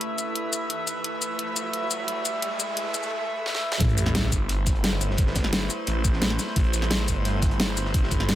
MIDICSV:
0, 0, Header, 1, 6, 480
1, 0, Start_track
1, 0, Key_signature, 0, "minor"
1, 0, Tempo, 344828
1, 1455, Time_signature, 4, 2, 24, 8
1, 11625, End_track
2, 0, Start_track
2, 0, Title_t, "Synth drone"
2, 0, Program_c, 0, 95
2, 0, Note_on_c, 0, 57, 81
2, 0, Note_on_c, 0, 64, 73
2, 0, Note_on_c, 0, 71, 73
2, 0, Note_on_c, 0, 76, 89
2, 5240, Note_off_c, 0, 57, 0
2, 5240, Note_off_c, 0, 64, 0
2, 5240, Note_off_c, 0, 71, 0
2, 5264, Note_off_c, 0, 76, 0
2, 5294, Note_on_c, 0, 71, 74
2, 5295, Note_on_c, 0, 57, 81
2, 5295, Note_on_c, 0, 64, 74
2, 5295, Note_on_c, 0, 72, 87
2, 11625, Note_off_c, 0, 57, 0
2, 11625, Note_off_c, 0, 64, 0
2, 11625, Note_off_c, 0, 71, 0
2, 11625, Note_off_c, 0, 72, 0
2, 11625, End_track
3, 0, Start_track
3, 0, Title_t, "Detuned saw bass"
3, 0, Program_c, 1, 39
3, 5294, Note_on_c, 1, 33, 98
3, 5995, Note_off_c, 1, 33, 0
3, 6014, Note_on_c, 1, 31, 99
3, 7915, Note_off_c, 1, 31, 0
3, 8175, Note_on_c, 1, 33, 98
3, 8876, Note_off_c, 1, 33, 0
3, 9134, Note_on_c, 1, 33, 104
3, 9835, Note_off_c, 1, 33, 0
3, 9854, Note_on_c, 1, 31, 100
3, 11625, Note_off_c, 1, 31, 0
3, 11625, End_track
4, 0, Start_track
4, 0, Title_t, "Riser"
4, 0, Program_c, 2, 103
4, 0, Note_on_c, 2, 60, 84
4, 4335, Note_off_c, 2, 60, 0
4, 11625, End_track
5, 0, Start_track
5, 0, Title_t, "Sub drop"
5, 0, Program_c, 3, 103
5, 5295, Note_on_c, 3, 60, 80
5, 7215, Note_off_c, 3, 60, 0
5, 11625, End_track
6, 0, Start_track
6, 0, Title_t, "Drums"
6, 14, Note_on_c, 9, 42, 88
6, 154, Note_off_c, 9, 42, 0
6, 254, Note_on_c, 9, 42, 67
6, 254, Note_on_c, 9, 82, 61
6, 394, Note_off_c, 9, 42, 0
6, 394, Note_off_c, 9, 82, 0
6, 494, Note_on_c, 9, 42, 93
6, 633, Note_off_c, 9, 42, 0
6, 734, Note_on_c, 9, 42, 72
6, 734, Note_on_c, 9, 82, 67
6, 873, Note_off_c, 9, 42, 0
6, 873, Note_off_c, 9, 82, 0
6, 973, Note_on_c, 9, 42, 97
6, 1113, Note_off_c, 9, 42, 0
6, 1214, Note_on_c, 9, 42, 66
6, 1214, Note_on_c, 9, 82, 59
6, 1353, Note_off_c, 9, 42, 0
6, 1353, Note_off_c, 9, 82, 0
6, 1453, Note_on_c, 9, 42, 103
6, 1593, Note_off_c, 9, 42, 0
6, 1694, Note_on_c, 9, 42, 69
6, 1694, Note_on_c, 9, 82, 62
6, 1833, Note_off_c, 9, 42, 0
6, 1833, Note_off_c, 9, 82, 0
6, 1934, Note_on_c, 9, 42, 99
6, 2073, Note_off_c, 9, 42, 0
6, 2174, Note_on_c, 9, 42, 72
6, 2174, Note_on_c, 9, 82, 61
6, 2314, Note_off_c, 9, 42, 0
6, 2314, Note_off_c, 9, 82, 0
6, 2414, Note_on_c, 9, 42, 89
6, 2553, Note_off_c, 9, 42, 0
6, 2655, Note_on_c, 9, 42, 73
6, 2655, Note_on_c, 9, 82, 66
6, 2794, Note_off_c, 9, 42, 0
6, 2794, Note_off_c, 9, 82, 0
6, 2895, Note_on_c, 9, 42, 101
6, 3034, Note_off_c, 9, 42, 0
6, 3135, Note_on_c, 9, 42, 70
6, 3135, Note_on_c, 9, 82, 62
6, 3274, Note_off_c, 9, 42, 0
6, 3274, Note_off_c, 9, 82, 0
6, 3374, Note_on_c, 9, 42, 100
6, 3514, Note_off_c, 9, 42, 0
6, 3614, Note_on_c, 9, 42, 74
6, 3614, Note_on_c, 9, 82, 67
6, 3754, Note_off_c, 9, 42, 0
6, 3754, Note_off_c, 9, 82, 0
6, 3854, Note_on_c, 9, 42, 100
6, 3994, Note_off_c, 9, 42, 0
6, 4095, Note_on_c, 9, 42, 71
6, 4095, Note_on_c, 9, 82, 63
6, 4215, Note_off_c, 9, 82, 0
6, 4215, Note_on_c, 9, 82, 29
6, 4234, Note_off_c, 9, 42, 0
6, 4354, Note_off_c, 9, 82, 0
6, 4815, Note_on_c, 9, 38, 65
6, 4935, Note_off_c, 9, 38, 0
6, 4935, Note_on_c, 9, 38, 64
6, 5075, Note_off_c, 9, 38, 0
6, 5175, Note_on_c, 9, 38, 85
6, 5289, Note_on_c, 9, 42, 85
6, 5295, Note_off_c, 9, 42, 0
6, 5295, Note_on_c, 9, 36, 122
6, 5295, Note_on_c, 9, 42, 105
6, 5315, Note_off_c, 9, 38, 0
6, 5415, Note_off_c, 9, 42, 0
6, 5415, Note_on_c, 9, 42, 42
6, 5434, Note_off_c, 9, 36, 0
6, 5536, Note_off_c, 9, 42, 0
6, 5536, Note_on_c, 9, 42, 68
6, 5536, Note_on_c, 9, 82, 61
6, 5540, Note_off_c, 9, 42, 0
6, 5540, Note_on_c, 9, 42, 67
6, 5646, Note_off_c, 9, 42, 0
6, 5646, Note_on_c, 9, 42, 44
6, 5656, Note_on_c, 9, 40, 49
6, 5675, Note_off_c, 9, 82, 0
6, 5773, Note_off_c, 9, 42, 0
6, 5773, Note_on_c, 9, 42, 91
6, 5774, Note_on_c, 9, 38, 122
6, 5776, Note_off_c, 9, 38, 0
6, 5776, Note_off_c, 9, 42, 0
6, 5776, Note_on_c, 9, 38, 122
6, 5776, Note_on_c, 9, 42, 97
6, 5795, Note_off_c, 9, 40, 0
6, 5898, Note_off_c, 9, 38, 0
6, 5898, Note_on_c, 9, 38, 51
6, 5915, Note_off_c, 9, 42, 0
6, 6014, Note_on_c, 9, 36, 61
6, 6016, Note_on_c, 9, 42, 66
6, 6016, Note_on_c, 9, 82, 62
6, 6038, Note_off_c, 9, 38, 0
6, 6154, Note_off_c, 9, 36, 0
6, 6155, Note_off_c, 9, 42, 0
6, 6155, Note_off_c, 9, 82, 0
6, 6251, Note_on_c, 9, 42, 102
6, 6255, Note_off_c, 9, 42, 0
6, 6255, Note_on_c, 9, 42, 93
6, 6394, Note_off_c, 9, 42, 0
6, 6484, Note_on_c, 9, 42, 72
6, 6490, Note_on_c, 9, 38, 37
6, 6494, Note_on_c, 9, 36, 101
6, 6496, Note_off_c, 9, 42, 0
6, 6496, Note_on_c, 9, 42, 72
6, 6496, Note_on_c, 9, 82, 63
6, 6618, Note_off_c, 9, 42, 0
6, 6618, Note_on_c, 9, 42, 43
6, 6629, Note_off_c, 9, 38, 0
6, 6633, Note_off_c, 9, 36, 0
6, 6635, Note_off_c, 9, 82, 0
6, 6735, Note_off_c, 9, 42, 0
6, 6735, Note_on_c, 9, 38, 117
6, 6735, Note_on_c, 9, 42, 101
6, 6738, Note_off_c, 9, 38, 0
6, 6738, Note_on_c, 9, 38, 118
6, 6741, Note_off_c, 9, 42, 0
6, 6741, Note_on_c, 9, 42, 97
6, 6877, Note_off_c, 9, 38, 0
6, 6881, Note_off_c, 9, 42, 0
6, 6974, Note_on_c, 9, 42, 66
6, 6975, Note_off_c, 9, 42, 0
6, 6975, Note_on_c, 9, 42, 68
6, 6975, Note_on_c, 9, 82, 55
6, 7106, Note_on_c, 9, 38, 52
6, 7114, Note_off_c, 9, 42, 0
6, 7114, Note_off_c, 9, 82, 0
6, 7203, Note_on_c, 9, 42, 92
6, 7214, Note_on_c, 9, 36, 125
6, 7215, Note_off_c, 9, 42, 0
6, 7215, Note_on_c, 9, 42, 98
6, 7245, Note_off_c, 9, 38, 0
6, 7335, Note_on_c, 9, 38, 60
6, 7353, Note_off_c, 9, 36, 0
6, 7354, Note_off_c, 9, 42, 0
6, 7454, Note_off_c, 9, 38, 0
6, 7454, Note_on_c, 9, 36, 65
6, 7454, Note_on_c, 9, 38, 97
6, 7455, Note_on_c, 9, 42, 87
6, 7455, Note_on_c, 9, 82, 60
6, 7574, Note_on_c, 9, 40, 50
6, 7578, Note_off_c, 9, 38, 0
6, 7578, Note_on_c, 9, 38, 47
6, 7593, Note_off_c, 9, 36, 0
6, 7594, Note_off_c, 9, 42, 0
6, 7594, Note_off_c, 9, 82, 0
6, 7693, Note_on_c, 9, 42, 96
6, 7694, Note_off_c, 9, 38, 0
6, 7694, Note_off_c, 9, 42, 0
6, 7694, Note_on_c, 9, 38, 127
6, 7694, Note_on_c, 9, 42, 100
6, 7707, Note_off_c, 9, 38, 0
6, 7707, Note_on_c, 9, 38, 120
6, 7713, Note_off_c, 9, 40, 0
6, 7817, Note_off_c, 9, 38, 0
6, 7817, Note_on_c, 9, 38, 52
6, 7833, Note_off_c, 9, 42, 0
6, 7929, Note_on_c, 9, 42, 70
6, 7934, Note_off_c, 9, 42, 0
6, 7934, Note_on_c, 9, 42, 68
6, 7934, Note_on_c, 9, 82, 60
6, 7957, Note_off_c, 9, 38, 0
6, 8073, Note_off_c, 9, 42, 0
6, 8073, Note_off_c, 9, 82, 0
6, 8169, Note_on_c, 9, 42, 91
6, 8173, Note_off_c, 9, 42, 0
6, 8173, Note_on_c, 9, 42, 93
6, 8312, Note_off_c, 9, 42, 0
6, 8412, Note_on_c, 9, 42, 71
6, 8413, Note_on_c, 9, 36, 111
6, 8414, Note_off_c, 9, 42, 0
6, 8414, Note_on_c, 9, 42, 69
6, 8414, Note_on_c, 9, 82, 58
6, 8533, Note_on_c, 9, 38, 51
6, 8553, Note_off_c, 9, 36, 0
6, 8553, Note_off_c, 9, 42, 0
6, 8553, Note_off_c, 9, 82, 0
6, 8652, Note_on_c, 9, 42, 88
6, 8653, Note_off_c, 9, 38, 0
6, 8653, Note_on_c, 9, 38, 119
6, 8654, Note_off_c, 9, 38, 0
6, 8654, Note_off_c, 9, 42, 0
6, 8654, Note_on_c, 9, 38, 127
6, 8654, Note_on_c, 9, 42, 100
6, 8774, Note_off_c, 9, 42, 0
6, 8774, Note_on_c, 9, 40, 51
6, 8774, Note_on_c, 9, 42, 43
6, 8793, Note_off_c, 9, 38, 0
6, 8893, Note_off_c, 9, 42, 0
6, 8893, Note_on_c, 9, 38, 38
6, 8893, Note_on_c, 9, 42, 64
6, 8893, Note_on_c, 9, 82, 57
6, 8894, Note_off_c, 9, 42, 0
6, 8894, Note_on_c, 9, 42, 71
6, 8913, Note_off_c, 9, 40, 0
6, 9005, Note_off_c, 9, 38, 0
6, 9005, Note_on_c, 9, 38, 47
6, 9033, Note_off_c, 9, 82, 0
6, 9034, Note_off_c, 9, 42, 0
6, 9133, Note_on_c, 9, 42, 97
6, 9134, Note_on_c, 9, 36, 127
6, 9137, Note_off_c, 9, 42, 0
6, 9137, Note_on_c, 9, 42, 85
6, 9144, Note_off_c, 9, 38, 0
6, 9244, Note_off_c, 9, 42, 0
6, 9244, Note_on_c, 9, 42, 45
6, 9273, Note_off_c, 9, 36, 0
6, 9374, Note_off_c, 9, 42, 0
6, 9374, Note_on_c, 9, 42, 67
6, 9374, Note_on_c, 9, 82, 61
6, 9377, Note_off_c, 9, 42, 0
6, 9377, Note_on_c, 9, 42, 68
6, 9492, Note_off_c, 9, 42, 0
6, 9492, Note_on_c, 9, 42, 46
6, 9494, Note_on_c, 9, 40, 48
6, 9513, Note_off_c, 9, 82, 0
6, 9614, Note_off_c, 9, 42, 0
6, 9614, Note_on_c, 9, 38, 127
6, 9614, Note_on_c, 9, 42, 94
6, 9615, Note_off_c, 9, 38, 0
6, 9615, Note_on_c, 9, 38, 119
6, 9617, Note_off_c, 9, 42, 0
6, 9617, Note_on_c, 9, 42, 94
6, 9634, Note_off_c, 9, 40, 0
6, 9743, Note_off_c, 9, 38, 0
6, 9743, Note_on_c, 9, 38, 52
6, 9756, Note_off_c, 9, 42, 0
6, 9854, Note_on_c, 9, 36, 64
6, 9855, Note_on_c, 9, 42, 64
6, 9855, Note_on_c, 9, 82, 57
6, 9858, Note_off_c, 9, 42, 0
6, 9858, Note_on_c, 9, 42, 63
6, 9883, Note_off_c, 9, 38, 0
6, 9993, Note_off_c, 9, 36, 0
6, 9995, Note_off_c, 9, 82, 0
6, 9998, Note_off_c, 9, 42, 0
6, 10091, Note_on_c, 9, 42, 85
6, 10095, Note_off_c, 9, 42, 0
6, 10095, Note_on_c, 9, 42, 91
6, 10235, Note_off_c, 9, 42, 0
6, 10327, Note_on_c, 9, 42, 70
6, 10335, Note_off_c, 9, 42, 0
6, 10335, Note_on_c, 9, 36, 108
6, 10335, Note_on_c, 9, 42, 71
6, 10335, Note_on_c, 9, 82, 60
6, 10337, Note_on_c, 9, 38, 35
6, 10455, Note_off_c, 9, 42, 0
6, 10455, Note_on_c, 9, 42, 45
6, 10474, Note_off_c, 9, 36, 0
6, 10475, Note_off_c, 9, 82, 0
6, 10476, Note_off_c, 9, 38, 0
6, 10573, Note_on_c, 9, 38, 109
6, 10575, Note_off_c, 9, 38, 0
6, 10575, Note_off_c, 9, 42, 0
6, 10575, Note_on_c, 9, 38, 127
6, 10575, Note_on_c, 9, 42, 91
6, 10579, Note_off_c, 9, 42, 0
6, 10579, Note_on_c, 9, 42, 90
6, 10714, Note_off_c, 9, 38, 0
6, 10718, Note_off_c, 9, 42, 0
6, 10816, Note_on_c, 9, 42, 66
6, 10816, Note_on_c, 9, 82, 57
6, 10823, Note_off_c, 9, 42, 0
6, 10823, Note_on_c, 9, 42, 67
6, 10930, Note_on_c, 9, 38, 51
6, 10955, Note_off_c, 9, 82, 0
6, 10963, Note_off_c, 9, 42, 0
6, 11055, Note_on_c, 9, 36, 120
6, 11055, Note_on_c, 9, 42, 98
6, 11057, Note_off_c, 9, 42, 0
6, 11057, Note_on_c, 9, 42, 86
6, 11069, Note_off_c, 9, 38, 0
6, 11180, Note_on_c, 9, 38, 59
6, 11194, Note_off_c, 9, 36, 0
6, 11197, Note_off_c, 9, 42, 0
6, 11287, Note_on_c, 9, 42, 72
6, 11295, Note_off_c, 9, 42, 0
6, 11295, Note_on_c, 9, 36, 67
6, 11295, Note_on_c, 9, 42, 62
6, 11295, Note_on_c, 9, 82, 59
6, 11320, Note_off_c, 9, 38, 0
6, 11416, Note_on_c, 9, 40, 47
6, 11434, Note_off_c, 9, 36, 0
6, 11435, Note_off_c, 9, 42, 0
6, 11435, Note_off_c, 9, 82, 0
6, 11531, Note_on_c, 9, 42, 85
6, 11535, Note_off_c, 9, 42, 0
6, 11535, Note_on_c, 9, 38, 118
6, 11535, Note_on_c, 9, 42, 87
6, 11537, Note_off_c, 9, 38, 0
6, 11537, Note_on_c, 9, 38, 122
6, 11555, Note_off_c, 9, 40, 0
6, 11625, Note_off_c, 9, 38, 0
6, 11625, Note_off_c, 9, 42, 0
6, 11625, End_track
0, 0, End_of_file